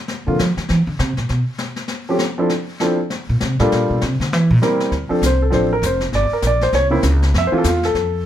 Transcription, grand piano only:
0.27 0.37 D3 medium
0.27 0.37 F3 soft
0.27 0.38 A3 soft
0.27 0.38 A#3 soft
0.27 0.38 F4 medium
2.09 2.19 F3 medium
2.09 2.19 A3 medium
2.09 2.20 C4 medium
2.09 2.19 C#4 medium
2.09 2.20 G4 medium
2.38 2.49 F3 medium
2.38 2.49 C4 medium
2.38 2.49 D4 medium
2.38 2.49 E4 medium
2.38 2.50 A4 medium
2.81 2.97 F3 medium
2.81 2.97 C4 medium
2.81 2.98 D4 medium
2.81 2.98 E4 medium
2.81 2.98 A4 medium
3.60 3.99 G3 medium
3.60 3.99 A#3 medium
3.60 4.00 D4 medium
3.60 4.00 F4 medium
3.60 4.00 A4 medium
4.62 4.92 G3 medium
4.62 4.92 A#3 medium
4.62 4.92 C4 medium
4.62 4.93 E4 medium
4.62 4.93 A#4 medium
5.09 5.21 F3 medium
5.09 5.21 C4 medium
5.09 5.21 D4 medium
5.09 5.21 A4 medium
5.26 5.42 C5 medium
5.42 5.51 A4 medium
5.50 5.68 F3 medium
5.50 5.69 C4 medium
5.50 5.69 D4 medium
5.50 5.69 A4 medium
5.50 5.71 C5 medium
5.73 5.83 A#4 medium
5.85 6.02 C5 medium
6.15 6.32 D5 medium
6.33 6.44 A#4 medium
6.47 6.63 D5 medium
6.63 6.74 C5 medium
6.75 6.86 C#5 medium
6.91 7.02 C#3 medium
6.91 7.02 A#3 medium
6.91 7.02 C4 medium
6.91 7.03 E4 medium
7.38 7.46 E5 medium
7.47 7.56 C5 medium
7.52 7.63 E3 medium
7.52 7.63 A3 medium
7.52 7.63 C4 medium
7.52 7.64 F4 medium
7.58 7.66 A4 medium
7.67 7.84 F4 medium
7.85 8.23 A4 medium

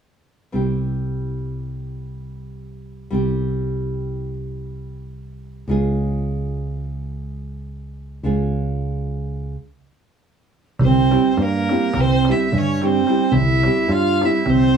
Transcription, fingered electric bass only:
0.54 3.08 C2 soft
3.12 5.65 C2 soft
5.68 8.20 C#2 medium
8.23 9.54 C#2 medium
10.81 11.15 C2 medium
11.37 11.72 G2 medium
11.95 12.30 C2 medium
12.52 13.00 G2 medium
13.32 13.66 C2 medium
13.88 14.23 G2 medium
14.46 14.77 C2 medium

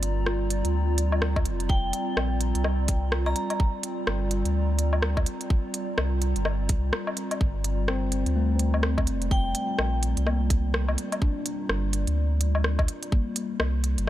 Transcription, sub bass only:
0.00 0.63 G1 medium
0.65 1.47 D2 medium
1.46 1.92 F1 medium
2.17 2.53 A#1 loud
2.55 3.35 C2 medium
4.07 4.44 G1 loud
4.45 5.25 D2 medium
5.98 6.34 C2 loud
6.36 6.71 G1 medium
6.69 6.92 C2 loud
7.41 8.25 G1 medium
8.26 9.09 D2 medium
9.07 9.54 F1 loud
9.79 10.15 A#1 medium
10.17 10.97 C2 medium
11.69 12.06 G1 loud
12.07 12.87 D2 medium
13.60 13.96 C2 loud
13.98 14.09 G1 medium

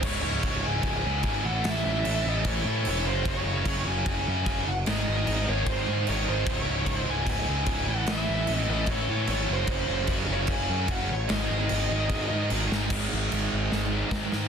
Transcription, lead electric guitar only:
0.04 0.61 C#5 medium
0.64 0.82 G#5 loud
0.83 1.46 G#5 loud
1.45 1.66 F#5 medium
1.68 2.28 E5 loud
2.29 2.48 D#5 medium
2.47 2.84 C#5 loud
2.88 3.06 C#5 loud
3.07 3.27 C5 loud
3.28 3.89 C#5 loud
3.88 4.07 G#5 loud
4.08 4.69 G#5 loud
4.68 4.73 F#5 medium
4.90 5.44 D#5 medium
5.49 5.69 C#5 medium
5.70 6.08 C5 medium
6.09 6.29 C#5 loud
6.30 6.47 C5 medium
6.52 6.95 C#5 medium
6.95 7.12 C5 medium
7.10 7.28 G#5 medium
7.30 7.85 G#5 loud
7.89 8.09 F#5 loud
8.11 8.55 E5 medium
8.55 8.70 D#5 medium
8.70 8.90 D#5 medium
8.91 9.29 C#5 loud
9.31 9.51 C#5 medium
9.53 10.08 C5 medium
10.33 10.50 C#5 medium
10.52 10.88 G#5 loud
10.91 11.11 F#5 loud
11.12 11.30 C#5 medium
11.33 12.48 D#5 medium

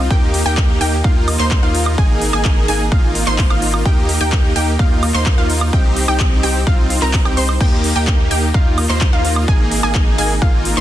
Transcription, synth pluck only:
0.11 0.43 G5 loud
0.46 0.78 G5 loud
0.81 0.96 G5 loud
1.04 1.37 F5 medium
1.39 1.60 C6 loud
1.63 1.95 F5 medium
1.98 2.30 G#5 loud
2.33 2.66 G#5 loud
2.68 2.84 G#5 loud
2.92 3.24 F5 medium
3.27 3.48 C6 loud
3.50 3.83 F5 medium
3.85 4.18 G5 loud
4.21 4.53 G5 loud
4.56 4.71 G5 loud
4.79 5.12 F5 medium
5.14 5.35 C6 loud
5.38 5.70 F5 medium
5.73 6.05 G5 loud
6.08 6.41 G5 loud
6.43 6.59 G5 loud
6.67 6.99 F5 medium
7.02 7.23 A#5 medium
7.25 7.34 G5 medium
7.37 7.52 C6 loud
7.61 7.93 G5 loud
7.96 8.28 G5 loud
8.31 8.46 G5 loud
8.54 8.87 F5 medium
8.89 9.10 C6 loud
9.13 9.45 F5 medium
9.48 9.80 G#5 loud
9.83 10.16 G#5 loud
10.18 10.34 G#5 loud
10.42 10.74 F5 medium
10.77 10.81 C6 loud

